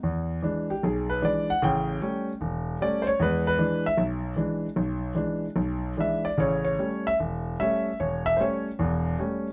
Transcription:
X:1
M:4/4
L:1/8
Q:"Swing" 1/4=151
K:A
V:1 name="Grand piano"
z3 =G ^G B d f | =g3 z3 d [=c^c] | B B2 e z4 | z6 e d |
c c2 e z2 e2 | c e [=c^c] z4 z |]
V:2 name="Grand piano" clef=bass
E,,2 [E,G,D] z B,,,2 [E,G,D] z | [A,,,C,]2 [=G,A,C] z E,,,2 [G,A,C] z | [E,,G,]2 [E,G,D] z B,,,2 [E,G,D] z | B,,,2 [E,G,D] z B,,,2 [E,G,D] z |
[A,,,C,]2 [=G,A,C] z E,,,2 [G,A,C] z | E,,,2 [=G,A,C] z [E,,,E,,]2 [G,A,C] z |]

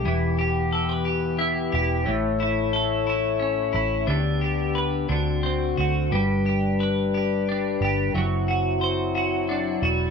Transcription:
X:1
M:6/8
L:1/16
Q:3/8=59
K:G
V:1 name="Clean electric guitar"
E,2 G2 A B G2 E2 G2 | A,,2 E2 A2 E2 ^C2 E2 | D,2 G2 B2 D,2 C2 F2 | G,2 G2 B2 G2 D2 G2 |
F,2 F2 c2 F2 D2 F2 |]
V:2 name="Brass ensemble"
[E,B,G]12 | [A,E^c]12 | [B,DG]6 [D,CF]6 | [G,DB]12 |
[F,CE]12 |]
V:3 name="Fingered electric bass" clef=bass
E,,,8- E,,,2 E,,,2 | A,,,8- A,,,2 A,,,2 | D,,6 D,,4 D,,2 | G,,,8- G,,,2 G,,,2 |
F,,,8- F,,,2 E,,,2 |]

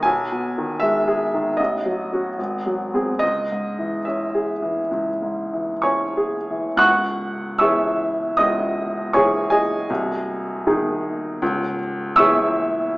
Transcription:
X:1
M:4/4
L:1/8
Q:1/4=76
K:C#m
V:1 name="Upright piano"
g2 e2 d4 | d2 e4 [cgc']2 | [fc'f']2 [ec'e']2 [dd']2 [cgc'] [Gdg]- | [Gdg]4- [Gdg] z [ec'e']2 |]
V:2 name="Upright piano" clef=bass
(3B,,, B,, D, (3G, G D, (3A,,, F, [CF] (3G,,, F, [^B,G] | (3C,, G,, E, (3C G E, (3C,, G,, E, (3C G E, | [C,,,C,,]2 [E,CG]2 [C,,,C,,]2 [E,CG]2 | [^B,,,,^B,,,]2 [D,DG]2 [C,,,C,,]2 [E,CG]2 |]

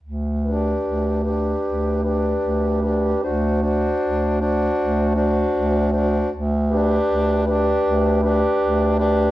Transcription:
X:1
M:4/4
L:1/8
Q:1/4=78
K:G
V:1 name="Clarinet"
z B2 B2 B2 B | c c2 c2 c2 c | z B2 B2 B2 B |]
V:2 name="Alto saxophone"
z G2 G2 G2 G | F F2 F2 F2 F | z G2 G2 G2 G |]
V:3 name="Tenor saxophone"
z D2 D2 D2 D | D D2 D2 D2 D | z D2 D2 D2 D |]
V:4 name="Bass clarinet" clef=bass
D,,2 D,,2 D,,2 D,,2 | D,,2 D,,2 D,,2 D,,2 | D,,2 D,,2 D,,2 D,,2 |]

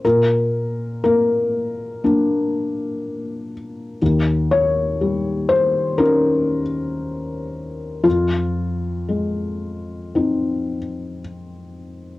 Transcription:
X:1
M:4/4
L:1/8
Q:1/4=60
K:Fm
V:1 name="Felt piano"
B2 B4- B z | z d2 c B4 | F6 z2 |]
V:2 name="Felt piano"
B,,2 B,2 [B,=D]4 | E,,2 G,2 [DE]4 | F,,2 A,2 [CE]4 |]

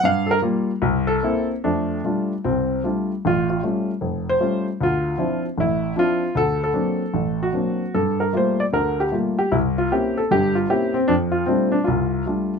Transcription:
X:1
M:4/4
L:1/8
Q:"Swing" 1/4=153
K:F
V:1 name="Grand piano"
f [AB] z3 A2 z | D3 z C2 z2 | ^E E4 ^B2 z | F3 z E2 F2 |
A A4 ^F3 | A B c d B G z G | E F G A G F G C | D F C D F4 |]
V:2 name="Grand piano"
G,,2 [G,B,F] z C,,2 [B,CE] z | [F,,A,]2 [G,A,DF] z C,,2 [G,A,DF] z | A,,,2 [G,A,^C^E] z ^E,,,2 [G,A,CE] z | D,,2 [F,CDE] z A,,,2 [F,CDE] z |
D,,2 [^F,B,CD] z A,,,2 [F,B,CD] z | G,,2 [G,A,B,F] z [D,,D,]2 [G,A,B,F] z | C,,2 [B,C_DE] z [G,,,G,,]2 [B,CDE] z | F,,2 [G,A,DF] z C,,2 [G,A,DF] z |]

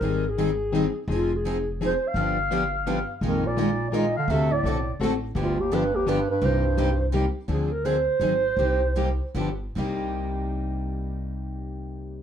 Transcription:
X:1
M:3/4
L:1/16
Q:"Swing" 1/4=169
K:Cm
V:1 name="Clarinet"
B2 A8 z2 | F2 A4 z2 c2 f2- | f8- f2 z2 | B2 d4- d3/2 d/2 e2 f2 |
=e2 d4- d z4 z | F2 G2 =B2 G2 B2 B2 | c8 z4 | A2 B2 c8- |
c8 z4 | z12 | z12 |]
V:2 name="Steel-string acoustic guitar"
[E,G,CEA]2 z2 [E,G,CEA] z3 [E,G,CEA] z3 | [F,CEA]2 z2 [F,CEA] z3 [F,CEA] z3 | [D,F,=B,DG]2 z2 [D,F,B,DG] z3 [D,F,B,DG] z3 | [E,A,EFB]2 z2 [E,A,EFB] z3 [E,A,EFB] z3 |
[D,=A,C^F=A]2 z2 [D,A,CFA] z3 [D,A,CFA] z3 | [D,F,=B,DG]2 z2 [D,F,B,DG] z3 [D,F,B,DG] z3 | [C,G,B,EG]2 z2 [C,G,B,EG] z3 [C,G,B,EG] z3 | [D,F,CDA]2 z2 [D,F,CDA] z3 [E,_G,CEA] z3 |
[C,G,B,EG]2 z2 [C,G,B,EG] z3 [D,F,=B,DG] z3 | [C,G,B,EG]12- | [C,G,B,EG]12 |]
V:3 name="Steel-string acoustic guitar"
[E,G,CEA]2 z2 [E,G,CEA] z3 [E,G,CEA] z3 | [F,CEA]2 z2 [F,CEA] z3 [F,CEA] z3 | [D,F,=B,DG]2 z2 [D,F,B,DG] z3 [D,F,B,DG] z3 | [E,A,EFB]2 z2 [E,A,EFB] z3 [E,A,EFB] z3 |
[D,=A,C^F=A]2 z2 [D,A,CFA] z3 [D,A,CFA] z3 | [D,F,=B,DG]2 z2 [D,F,B,DG] z3 [D,F,B,DG] z3 | [C,G,B,EG]2 z2 [C,G,B,EG] z3 [C,G,B,EG] z3 | [D,F,CDA]2 z2 [D,F,CDA] z3 [E,_G,CEA] z3 |
[C,G,B,EG]2 z2 [C,G,B,EG] z3 [D,F,=B,DG] z3 | [C,G,B,EG]12- | [C,G,B,EG]12 |]
V:4 name="Bass clarinet" clef=bass
z12 | z12 | z12 | F,,2 B,,4- B,,3/2 B,,/2 B,,2 D,2 |
C,2 =A,,4- A,, z4 z | D,,2 E,,2 G,,2 E,,2 G,,2 G,,2 | G,,8 z4 | z12 |
z12 | z12 | z12 |]
V:5 name="Upright bass" clef=bass
A,,,12 | F,,,12 | G,,,12 | B,,,12 |
D,,4 =B,,,4 =A,,,4 | G,,,12 | C,,12 | D,,8 A,,,4 |
C,,8 G,,,4 | C,,12- | C,,12 |]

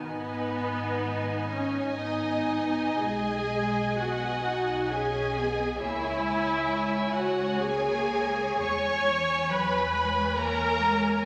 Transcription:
X:1
M:3/4
L:1/8
Q:1/4=64
K:G#m
V:1 name="Violin section"
B3 c d2 | g2 f2 g2 | e3 f g2 | c'2 b2 a2 |]
V:2 name="Violin section"
[dg]6- | [dg]6 | [cg]6- | [cg]6 |]
V:3 name="Viola section"
B,3 C D2 | G2 F2 G2 | E3 F G2 | c2 B2 A2 |]
V:4 name="Cello section"
D4 B,2 | G,2 B, D C B, | A, G,3 A,2 | G, E, F, G, A, G, |]
V:5 name="Double bass section" clef=bass
G,,,6 | B,,,6 | C,,6 | E,,6 |]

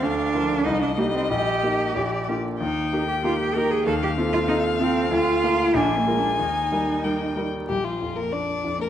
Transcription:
X:1
M:2/4
L:1/16
Q:1/4=94
K:Eb
V:1 name="Violin"
f4 e4- | e4 d2 z2 | g8 | f8- |
f4 a4- | a4 g2 z2 | [K:Bb] G F2 B d3 B |]
V:2 name="Cello"
D4 E D B, C | G6 z2 | E3 G F G B A | =A G2 F E2 C2 |
F4 (3D2 B,2 D2 | E6 z2 | [K:Bb] G, F,2 B, D3 B, |]
V:3 name="Grand piano"
D,,2 [F,FB]2 C,,2 [G,EG]2 | B,,,2 [B,EG]2 B,,,2 [B,DF]2 | E,,2 [B,EG]2 [B,EG]2 [B,EG]2 | E,,2 [CF=A]2 [CFA]2 [CFA]2 |
D,,2 [B,FB]2 B,,,2 [A,FB]2 | E,,2 [G,EB]2 [G,EB]2 [G,EB]2 | [K:Bb] B,,,2 F,,2 D2 F,,2 |]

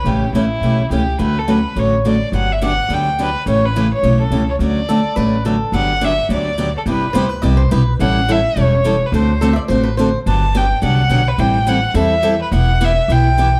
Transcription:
X:1
M:4/4
L:1/16
Q:"Swing" 1/4=212
K:D
V:1 name="Violin"
G4 E8 G4 | B2 A2 B4 c2 z2 d4 | f2 e2 f4 g2 z2 B4 | c2 B4 c4 A4 c2 |
d12 z4 | [K:G] f4 e4 d6 A2 | B4 z12 | f4 e4 ^c6 B2 |
c4 z12 | a4 g4 f6 B2 | g4 f4 e6 B2 | f4 e4 g8 |]
V:2 name="Steel-string acoustic guitar"
z16 | z16 | z16 | z16 |
z4 A4 B4 A4 | [K:G] z16 | z4 c2 B2 d2 c2 B3 z | z16 |
z4 A3/2 e/2 d2 c2 B2 c3 z | z16 | z16 | z16 |]
V:3 name="Steel-string acoustic guitar"
[C,E,A,CG]2 z2 [C,E,A,CG]2 z2 [C,E,A,CG]2 z2 [C,E,A,CG]2 z2 | [D,F,A,CF]2 z2 [D,F,A,CF]2 z2 [D,F,A,CF]2 z2 [D,F,A,CF]2 z2 | [D,F,B,DG]2 z2 [D,F,B,DG]2 z2 [D,F,B,DG]2 z2 [D,F,B,DG]2 z2 | [C,E,A,CG]2 z2 [C,E,A,CG]2 z2 [C,E,A,CG]2 z2 [C,E,A,CG]2 z2 |
[D,F,A,CF]2 z2 [D,F,A,CF]2 z2 [D,F,A,CF]2 z2 [D,F,A,CF]2 z2 | [K:G] [D,F,B,DG]2 z2 [D,F,B,DG]2 z2 [D,F,B,DG]2 z2 [D,F,B,DG]2 z2 | [C,G,B,EG]2 z2 [C,G,B,EG]2 z2 [C,G,B,EG]2 z2 [C,G,B,EG]2 z2 | [E,G,^CEA]2 z2 [E,G,CEA]2 z2 [E,G,CEA]2 z2 [E,G,CEA]2 z2 |
[D,A,CFA]2 z2 [D,A,CFA]2 z2 [D,A,CFA]2 z2 [D,A,CFA]2 z2 | [D,F,B,DG]2 z2 [D,F,B,DG]2 z2 [D,F,B,DG]2 z2 [D,F,B,DG]2 z2 | [E,G,CEA]2 z2 [E,G,CEA]2 z2 [E,G,CEA]2 z2 [E,G,CEA]2 z2 | [E,B,EG]2 z2 [E,B,EG]2 z2 [E,B,EG]2 z2 [E,B,EG]2 z2 |]
V:4 name="Upright bass" clef=bass
A,,,4 A,,,4 B,,,4 C,,4 | D,,8 A,,,8 | G,,,8 D,,8 | A,,,8 B,,,4 C,,4 |
D,,8 A,,,8 | [K:G] G,,,8 D,,8 | G,,,4 D,,4 C,,4 B,,,4 | A,,,8 E,,,8 |
D,,8 A,,,8 | G,,,8 C,,4 B,,,4 | A,,,8 E,,8 | E,,,8 B,,,8 |]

